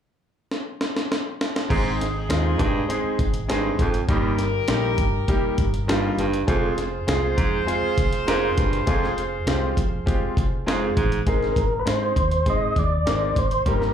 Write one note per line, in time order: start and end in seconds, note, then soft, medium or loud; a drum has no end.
0.51 snare soft
0.81 snare medium
0.97 snare medium
1.12 snare medium
1.41 snare medium
1.56 snare medium
1.70 2.31 G#1 loud
1.70 1.94 G#2 medium
1.70 2.04 G#3 medium
1.70 2.04 C4 medium
1.70 3.75 C4 medium
1.70 3.75 D#4 medium
1.70 2.04 D#4 medium
1.70 2.04 G#4 loud
1.70 3.76 G#4 medium
1.70 kick medium
1.70 crash medium
2.01 snare soft
2.01 closed hi-hat medium
2.29 2.59 D#2 medium
2.29 2.63 G#3 medium
2.29 2.63 C4 medium
2.29 2.64 D#4 medium
2.29 2.64 F4 medium
2.29 snare loud
2.29 closed hi-hat medium
2.59 2.83 G2 medium
2.59 2.85 G#2 medium
2.59 kick medium
2.59 closed hi-hat medium
2.89 3.23 G#3 medium
2.89 3.23 C4 medium
2.89 3.23 D#4 medium
2.89 3.23 G#4 medium
2.89 closed hi-hat medium
3.04 muted fingered electric bass stroke soft
3.19 3.70 G#1 medium
3.19 kick medium
3.19 closed hi-hat medium
3.34 closed hi-hat medium
3.48 3.73 G2 medium
3.48 3.83 G#3 medium
3.48 3.83 C4 medium
3.48 3.83 D#4 medium
3.48 3.83 G#4 loud
3.48 snare loud
3.48 closed hi-hat medium
3.79 4.05 G#1 medium
3.79 4.03 F2 medium
3.79 kick medium
3.79 closed hi-hat medium
3.94 closed hi-hat soft
4.08 4.59 G1 medium
4.08 4.33 D#2 medium
4.08 4.43 G3 loud
4.08 4.43 A#3 medium
4.08 6.14 D#4 medium
4.08 4.43 D#4 medium
4.08 6.14 G4 medium
4.08 4.43 G4 medium
4.08 6.14 A#4 loud
4.08 kick medium
4.08 closed hi-hat medium
4.39 snare soft
4.39 closed hi-hat medium
4.68 4.94 A#1 medium
4.68 5.02 G3 medium
4.68 5.02 A#3 medium
4.68 5.03 D#4 medium
4.68 5.03 G4 medium
4.68 snare loud
4.68 closed hi-hat medium
4.98 5.24 G2 medium
4.98 kick medium
4.98 closed hi-hat medium
5.28 5.62 G3 medium
5.28 5.62 A#3 medium
5.28 5.62 D#4 medium
5.28 5.63 G4 medium
5.28 kick medium
5.28 closed hi-hat medium
5.43 muted fingered electric bass stroke soft
5.58 6.09 G1 medium
5.58 kick medium
5.58 closed hi-hat medium
5.74 closed hi-hat medium
5.87 6.12 G2 medium
5.87 6.22 G3 medium
5.87 6.22 A#3 medium
5.87 6.22 D#4 medium
5.87 6.22 F4 loud
5.87 snare loud
5.87 closed hi-hat medium
6.17 6.43 F#1 medium
6.17 6.42 G2 medium
6.17 closed hi-hat medium
6.33 closed hi-hat soft
6.47 6.99 F1 loud
6.47 6.72 F2 medium
6.47 6.82 G#3 medium
6.47 6.82 C4 medium
6.47 6.82 F4 loud
6.47 10.93 F4 medium
6.47 6.82 G#4 loud
6.47 10.93 G#4 medium
6.47 10.93 C5 loud
6.47 kick medium
6.47 closed hi-hat medium
6.78 snare soft
6.78 closed hi-hat medium
7.07 7.33 C2 medium
7.07 7.41 G#3 medium
7.07 7.41 C4 medium
7.07 7.42 F4 medium
7.07 7.42 G#4 medium
7.07 snare loud
7.07 closed hi-hat medium
7.37 7.63 F2 medium
7.37 7.61 G#2 medium
7.37 kick medium
7.37 closed hi-hat medium
7.66 8.01 G#3 medium
7.66 8.01 C4 medium
7.66 8.01 F4 medium
7.66 8.01 G#4 medium
7.66 closed hi-hat medium
7.82 muted fingered electric bass stroke soft
7.98 8.48 F1 medium
7.98 kick medium
7.98 closed hi-hat medium
8.13 closed hi-hat medium
8.27 8.51 G#2 medium
8.27 8.61 G#3 medium
8.27 8.61 C4 medium
8.27 8.61 F4 medium
8.27 8.62 A#4 loud
8.27 snare loud
8.27 closed hi-hat medium
8.57 8.83 F#1 medium
8.57 8.81 G2 medium
8.57 kick medium
8.57 closed hi-hat medium
8.73 closed hi-hat soft
8.86 9.38 F1 medium
8.86 9.11 F2 medium
8.86 9.21 G#3 loud
8.86 9.21 C4 medium
8.86 9.21 F4 loud
8.86 9.21 G#4 loud
8.86 kick medium
8.86 closed hi-hat medium
9.04 snare soft
9.18 closed hi-hat medium
9.46 9.72 C2 medium
9.46 9.81 G#3 medium
9.46 9.81 C4 medium
9.46 9.81 F4 medium
9.46 9.81 G4 medium
9.46 snare loud
9.46 closed hi-hat medium
9.77 10.02 F2 medium
9.77 kick medium
9.77 closed hi-hat medium
10.06 10.40 G#3 medium
10.06 10.41 C4 medium
10.06 10.40 F4 medium
10.06 10.41 G4 medium
10.06 kick medium
10.06 closed hi-hat medium
10.22 muted fingered electric bass stroke soft
10.37 10.88 F1 medium
10.37 kick medium
10.37 closed hi-hat medium
10.66 10.91 G#2 medium
10.66 11.00 G#3 medium
10.66 11.01 C4 medium
10.66 11.01 F4 medium
10.66 11.01 G#4 medium
10.66 snare loud
10.66 closed hi-hat medium
10.97 11.22 A1 medium
10.97 11.21 G#2 medium
10.97 kick medium
10.97 closed hi-hat medium
11.12 closed hi-hat soft
11.26 11.52 G#1 medium
11.26 11.60 G#3 medium
11.26 11.60 C4 medium
11.26 11.61 D#4 medium
11.26 11.61 G#4 medium
11.26 11.82 A#4 medium
11.26 kick medium
11.26 closed hi-hat medium
11.43 snare soft
11.56 11.82 G#1 medium
11.56 kick medium
11.56 closed hi-hat medium
11.79 11.87 B4 medium
11.85 12.12 G#2 medium
11.85 12.20 G#3 medium
11.85 12.20 C4 medium
11.85 12.20 D#4 medium
11.85 12.20 G#4 medium
11.85 12.49 C5 medium
11.85 snare loud
11.85 closed hi-hat medium
12.16 12.42 D#2 medium
12.16 kick medium
12.16 closed hi-hat medium
12.31 closed hi-hat medium
12.46 12.72 G#2 medium
12.46 12.80 G#3 medium
12.46 12.80 C4 medium
12.46 12.80 D#4 medium
12.46 12.80 G#4 medium
12.46 12.79 D#5 medium
12.46 kick medium
12.46 closed hi-hat medium
12.76 13.08 D#2 medium
12.76 13.39 D5 medium
12.76 kick medium
12.76 closed hi-hat medium
13.06 13.32 G#1 medium
13.06 13.40 G#3 medium
13.06 13.40 C4 medium
13.06 13.40 D#4 medium
13.06 13.40 A#4 medium
13.06 snare loud
13.06 closed hi-hat medium
13.36 13.62 G#1 medium
13.36 13.68 C5 medium
13.36 kick medium
13.36 closed hi-hat medium
13.51 closed hi-hat soft
13.66 13.91 G1 medium
13.66 13.94 G3 medium
13.66 13.94 A#3 medium
13.66 13.94 D#4 medium
13.66 13.94 G4 medium
13.66 13.94 A#4 medium
13.66 kick medium
13.66 closed hi-hat medium
13.82 snare soft